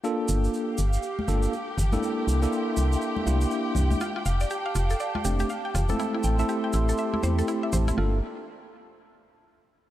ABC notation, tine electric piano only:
X:1
M:4/4
L:1/16
Q:"Swing 16ths" 1/4=121
K:Gdor
V:1 name="Tine electric piano"
[B,DFA]6 z4 [B,DFA]2 z3 [B,DEA]- | [B,DEA]3 [B,DEA]6- [B,DEA] [B,DEG]6 | z8 z2 [A,CDG]2 z3 [A,CEA]- | [A,CEA]3 [A,CEA]6- [A,CEA] [A,CEG]6 |
[B,DFA]2 z12 z2 |]